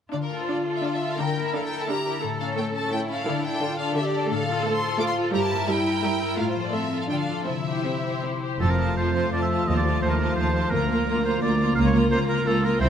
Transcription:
0.12 D3 D4 F4 D5
0.23 A#4
0.30 A3 F4 A4
0.41 C5
0.48 D4 D5
0.66 F4 A4
0.76 E5
0.83 D4 D5 F5
0.94 E5
1.02 F4 A4
1.11 F5
1.18 D3 D4 E4 A#4 G5
1.37 A#3 E4 A#4
1.46 E5
1.54 D4 A4 E5 F5
1.64 G5
1.71 E4 A#4
1.81 A5
1.88 D4 G4 E5 A#5
2.06 E4 A#4
2.22 A2 A3 A4
2.40 A3 C#4 A4 F5
2.57 A3 C#5 G5
2.75 C#4 A4 A5
2.92 A3 E4 E5 G5
3.09 C#4 A4 F5
3.26 D3 D4 A4
3.44 D4 A4 G5
3.61 D3 F4 A4
3.78 D4 A4 D5 F5
3.95 D3 G4 E5 D6
4.05 D5
4.13 D4 A4 D5
4.29 A2 A3 A4 F5
4.48 A3 F4 A4
4.65 A3 C5 A5
4.74 C6
4.82 F4 A4
4.99 A3 F4 F5 D6
5.08 C6
5.16 F4 A4
5.33 G2 G3 E4 G4 A#4 A#5
5.42 A5
5.51 A#3 E4 A#4
5.68 G3 E4 A#4 G5
5.86 E4 A#4
6.03 G3 E4 E5
6.21 E4 A#4
6.38 A2 A3 F4 F5
6.49 C5
6.56 F3 F4 A4
6.67 D5
6.72 A3 C4 A4 E5
6.92 F4 A4
7.01 F5
7.09 D3 D4 F4 A4 G5
7.19 F5
7.29 F4 A4
7.46 C3 C4 E4 E5
7.67 C4 G4 C5
7.84 C4 G4
8.05 G4 C5
8.22 C4 C6
8.42 G4 C5
8.60 F1 F2 F3 A3 F4 A4 A5
8.70 A#4
8.78 F3 C4 F4 A5
8.96 F2 F3 F4 A4 C5 A5
9.14 F3 F4 C5 A5
9.32 F2 F3 F4 A4 D5 A5
9.42 E5
9.49 F3 F4 C5 A5
9.67 D#2 D#3 F3 F4 D#5 A5
9.77 D5
9.85 F3 A3 F4 A5
10.01 D#2 F3 F4 C5 A5
10.10 A#4
10.19 F3 F4 A4 A5
10.36 D#2 F3 F4 C5 A5
10.54 F3 F4 A5
10.70 D2 D3 A#3 F4 A#4 A#5
10.90 A#3 F4 A#5
11.07 D2 A#3 F4 D5 A#5
11.24 A#3 F4 A#4 C5 A#5
11.41 D2 A#3 F4 D5 A#5
11.59 A#3 F4 A#5
11.75 C#2 C#3 A#3 F4 F5 A#5
11.86 C#5
11.93 A#3 F4 A#5
12.11 C#2 A#3 F4 A#4 C5 A#5
12.28 A#3 F4 A#4 A#5
12.45 C#2 A#3 F4 A4 A#4 A#5
12.63 A#3 F4 A#4 A#5
12.80 C2 C3 G3 C4 E4 C5 G5

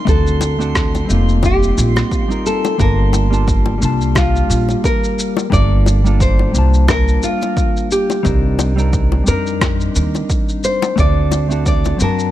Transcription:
Already playing: C6
0.05 D2 A3 C4 D4 F#4 A4, kick, shaker
0.27 shaker
0.41 high bongo, shaker
0.58 A3 C4 D4 F#4 A4, shaker
0.75 kick, cross-stick, shaker
0.95 high bongo, shaker
1.05 G3 C4 D#4
1.10 F1 A#3 F4, shaker
1.29 shaker
1.43 G4, kick, high bongo, shaker
1.63 shaker
1.78 A#1, shaker
1.96 cross-stick, high bongo, shaker
2.11 F4, kick, shaker
2.28 G3 C4 D#4 F4 A#4, shaker
2.46 A4, shaker
2.65 high bongo, shaker
2.78 G1 G3 A#3 D4 F4 A#4 A5, kick, shaker
3.13 high bongo, shaker
3.30 G3 A#3 D4 F4 A5, shaker
3.48 kick, shaker
3.66 high bongo
3.78 G3 A#3 D4
3.82 C2 F4 A5, shaker
4.01 shaker
4.15 F4, kick, cross-stick, high bongo, shaker
4.36 shaker
4.50 A#1, shaker
4.69 high bongo, shaker
4.84 A#4, kick, shaker
5.04 shaker
5.19 shaker
5.37 high bongo, shaker
5.50 G1 G3 A#3 D4 F4 A4 D5, kick, shaker
5.86 high bongo, shaker
6.04 G3 A#3 D4 F4 A4, shaker
6.20 C5, kick, shaker
6.39 high bongo
6.52 C2 G3 A#3 D4, shaker
6.57 F4 A5
6.74 shaker
6.88 A#4, kick, cross-stick, high bongo, shaker
7.08 shaker
7.23 F4, shaker
7.42 high bongo, shaker
7.57 kick, shaker
7.77 shaker
7.91 G4, shaker
8.10 high bongo, shaker
8.23 C2 G3 C4 D4 D#4 A#4, kick, shaker
8.59 high bongo, shaker
8.76 G3 C4 D4 D#4 A#4, shaker
8.93 kick, shaker
9.12 high bongo
9.24 F2 G3 C4 D4, shaker
9.28 D#4 A#4
9.46 shaker
9.61 kick, cross-stick, high bongo, shaker
9.81 shaker
9.95 D#2, shaker
10.15 high bongo, shaker
10.30 kick, shaker
10.49 shaker
10.64 C5, shaker
10.82 high bongo, shaker
10.96 D2 A3 C4 D4 F#4 A4, kick, shaker
11.00 D5
11.31 high bongo, shaker
11.49 A3 C4 D4 F#4 A4, shaker
11.66 D5, kick, shaker
11.85 high bongo, shaker
11.97 F#2 F#3 C4 D4, shaker
12.02 F#4 A#4 A5
12.19 shaker

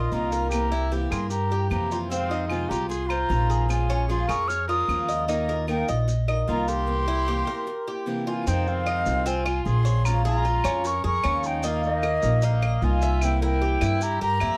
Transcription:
Already playing: D#4 F4 A#4 D#5 C6
0.11 C2 D#3 A#3 D#4 F4 A#4 A#5, maracas
0.32 A#4, maracas
0.50 C3 E3 A#3 C4 E4 G4 A#5, claves, maracas
0.72 A#3 C4 E4, maracas
0.91 C3 E3 A#3 C4 E4 G4, maracas
1.10 G2 A#3 C4 E4 G#4 A#4 C6, claves, maracas
1.30 G4 A#5, muted steel-string acoustic guitar stroke, maracas
1.50 A#3 C4 E4 G4, maracas
1.70 F2 C3 E3 A#3 C4 E4 G4 A#5, claves, maracas
1.92 F4, maracas
2.09 C3 D#3 G#3 C4 F4 F5, maracas
2.30 G#3 C4 D#4 F4, maracas
2.48 C3 D#3 G#3 C4 F4 G#5, claves, maracas
2.69 C2 G#3 C4 F4 G4 A#5, maracas
2.89 G#4 C6, muted steel-string acoustic guitar stroke, maracas
3.07 G#3 C4 F4 C5 A#5, claves
3.11 maracas
3.29 A#1 C3 D#3 G#3 C4 F4, maracas
3.50 G#4, maracas
3.68 F3 G#3 C#4 F4 G#5, claves, maracas
3.89 G#3 C#4 F4, maracas
4.08 F3 G#3 C#4 F4 G#4 C6, maracas
4.28 F2 G#3 C#4 F4 G#4 A#4 C#6, claves, maracas
4.48 C#5 F6, muted steel-string acoustic guitar stroke, maracas
4.68 G#3 C#4 F4 A#4 D#6, maracas
4.88 D#2 F3 G#3 C#4 F4, claves, maracas
5.09 D#5, maracas
5.28 D#3 A#3 D#4 F4 A#4 D#5, maracas
5.48 D#4 F4 A#4, maracas
5.67 D#3 A#3 D#4 F4 A#4 G5, claves, maracas
5.88 A#1 D#4 F4 A#4 D#5, maracas
6.08 muted steel-string acoustic guitar stroke, maracas
6.28 D#4 F4 A#4 D#5, claves, maracas
6.47 C2 D#3 A#3 D#4 F4 A#4 A#5, maracas
6.68 G4 A#4 C6, maracas
6.86 C3 E3 A#3 C4 E4
7.07 A#3 C4 E4
7.28 C3 E3 A#3 C4 E4 G4
7.47 A#3 C4 E4 A#4
7.67 muted steel-string acoustic guitar stroke
7.87 A#3 C4 E4 G4
8.06 C3 E3 A#3 C4 E4
8.27 F4 G#5
8.47 F2 C3 D#3 G#3 C4 D#4 F4 G5, maracas
8.67 C4 F5, maracas
8.86 D#4, claves, maracas
9.06 C2 D#3 G#3 C4 F4, maracas
9.26 C4 F4 G#5, muted steel-string acoustic guitar stroke, maracas
9.46 F4, claves, maracas
9.65 A#1 D#3 G#3 C4 F4 G#4 C6, maracas
9.85 C#5, maracas
10.05 F3 G#3 C#4 F4 A#5, claves, maracas
10.25 F4 G#4 A#5, maracas
10.45 F4, maracas
10.64 F2 G#3 C#4 F4, claves, maracas
10.84 A#4 C#6, muted steel-string acoustic guitar stroke, maracas
11.04 F2 G#4 A#4 C#6, maracas
11.23 D#2 F3 G#3 C#4 F4, claves, maracas
11.43 D#4 G5, maracas
11.62 D#3 A#3 D#4 F4 A#4, maracas
11.67 F5
11.83 A#3 D#5, maracas
12.02 A#4, claves, maracas
12.22 A#1 A#3 D#4 F4 A#4, maracas
12.42 A#3 D#4 F5, muted steel-string acoustic guitar stroke, maracas
12.62 D#5, claves, maracas
12.82 C2 A#3 D#4 F4 A#4 G#5, maracas
13.02 E5, maracas
13.21 C3 E3 A#3 C4 E4 G5, claves, maracas
13.42 E4 A#4 G5, maracas
13.62 G4, maracas
13.81 G2 E3 A#3 C4 E4, claves, maracas
14.01 G4 A#5, muted steel-string acoustic guitar stroke, maracas
14.21 G2 G4 A#4 A#5, maracas
14.40 F2 E3 A#3 C4 E4, claves, maracas

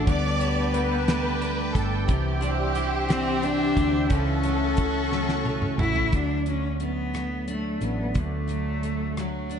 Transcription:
Already playing: E3 A3 D4 F#4 D6
0.06 D2 D3 G3 B3 B4 D5 G5 A5, kick, closed hi-hat
0.40 D4 G4, closed hi-hat
0.74 A4 B4, closed hi-hat
1.08 A3 B3, snare, closed hi-hat
1.41 D4 G4, closed hi-hat
1.74 G1 A4 B4, kick, closed hi-hat
2.08 C2 C3 E3 G4 C5 E5, kick, closed hi-hat
2.41 D4, closed hi-hat
2.75 E4 G4, closed hi-hat
3.09 E3 C4, snare, closed hi-hat
3.42 D4, closed hi-hat
3.76 D2 E4 G4, kick, closed hi-hat
4.09 C#2 C#3 E3 C#4 A4 F#5 C#6, kick, closed hi-hat
4.43 A3 C#4, closed hi-hat
4.77 E4 F#4, kick, closed hi-hat
5.11 F#3 A3, snare
5.29 snare
5.45 A3 C#4, high tom
5.62 mid tom
5.78 A1 E4 F#4, mid tom
5.96 F#4, floor tom
6.12 D2 D3 D4, kick, closed hi-hat
6.46 F#3 C#4, closed hi-hat
6.80 A3 B3, closed hi-hat
7.14 F#3, cross-stick, closed hi-hat
7.47 D4, closed hi-hat
7.51 A3
7.81 A1 A3 B3, closed hi-hat
8.14 D2 D3, kick, closed hi-hat
8.19 A3
8.48 F#3, closed hi-hat
8.83 A3, cross-stick, closed hi-hat
9.17 F#3, cross-stick, closed hi-hat
9.49 D4, closed hi-hat

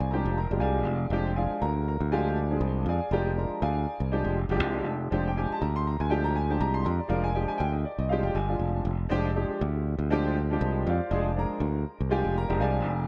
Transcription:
Already playing: G#4 D5 F5 G#5
0.00 C2
0.11 F3 G#3 D4 G4 A#4 A#5
0.25 F1
0.37 A#4 A#5
0.50 F1 F3 G#3 D4 G4
0.60 C2 G#4 D5 F5 G#5
0.86 F1
1.10 F1 F3 G#3 D4 G4
1.35 F3 G#3 D4 F4 G#4 D5 F5 G#5
1.50 muted fingered electric bass stroke
1.62 D2 A#4 A#5
1.76 D4 G#4
1.88 A#4 A#5
2.00 D2
2.11 F3 G#3 D4 G4 G#4 D5 F5 G#5
2.50 F3 G#3 D4 G#4
2.61 C2
2.86 F2 G#4 D5 F5 G#5
3.11 F1 F3 G#3 D4 G4 A#4 A#5
3.35 F3 G#3 D4 A#4 A#5
3.50 muted fingered electric bass stroke
3.62 D2 G#4 D5 F5 G#5
3.75 D4 G4
4.00 C2
4.12 F3 G#3 D4 G4
4.24 F1
4.49 F1 F3 G#3 D4 G4
4.60 C2
4.86 F1
5.10 F1 F3 G#3 D4 G4
5.27 G5
5.36 F3 G#3 D4 G4 G#5
5.50 A5, muted fingered electric bass stroke
5.61 D2 A#5
5.74 D4 A#4 C6
5.87 A#5
6.00 D2 G#5
6.09 F3 G#3 D4 G4 G5
6.24 A#5
6.36 G#5
6.49 F3 G#3 D4 G4 A5
6.60 C2 A#5
6.74 C6
6.85 F2 A#5
6.99 D5
7.08 F1 F3 G#3 D4 A#4 F5
7.24 G#5
7.35 F3 G#3 D4 G4 G5
7.48 G#5
7.58 D2 G5
7.72 D4 G4 D#5
7.85 D5
7.98 C2 D#5
8.09 F3 G#3 D4 G4 F5
8.23 F1 G5
8.35 G1 G#5
8.48 F3 G#3 D4 F4
8.59 F1
8.85 F1
9.09 F1 F3 G#3 D4 G4
9.34 F3 G#3 D4 G4
9.49 muted fingered electric bass stroke
9.61 D2
9.75 D4 G4
9.99 D2
10.10 F3 G#3 D4 G4
10.50 F3 G#3 D4 G4
10.61 C2
10.87 F2 F4 C5 D5 F5
11.10 F1 F3 G#3 D4 G#4
11.36 F3 G#3 D4 G#4 A#4 A#5
11.50 muted fingered electric bass stroke
11.60 D2
11.73 D4 G4
12.00 C2
12.09 F3 G#3 D4 G4 G#4 D5 F5 G#5
12.24 F1
12.38 A#4 A#5
12.48 F1 F3 G#3 D4 G4
12.60 C2 G#4 D5 F5 G#5
12.86 F1

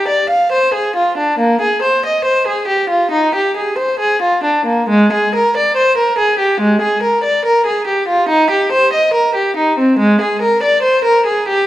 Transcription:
0.08 D5
0.29 F5
0.52 C5
0.74 G#4
0.96 F4
1.17 D4
1.39 A#3
1.61 G#4
1.82 C5
2.06 D#5
2.25 C5
2.47 G#4
2.68 G4
2.89 F4
3.11 D#4
3.35 G4
3.57 G#4
3.78 C5
3.99 G#4
4.22 F4
4.44 D4
4.65 A#3
4.89 G#3
5.12 G#4
5.35 A#4
5.57 D5
5.77 C5
5.97 A#4
6.18 G#4
6.39 G4
6.61 G#3
6.82 G#4
7.02 A#4
7.24 D5
7.45 A#4
7.66 G#4
7.87 G4
8.08 F4
8.28 D#4
8.50 G4
8.72 C5
8.93 D#5
9.14 A#4
9.35 G4
9.57 D#4
9.79 C4
9.99 G#3
10.21 G#4
10.42 A#4
10.63 D5
10.82 C5
11.04 A#4
11.26 G#4
11.48 G4

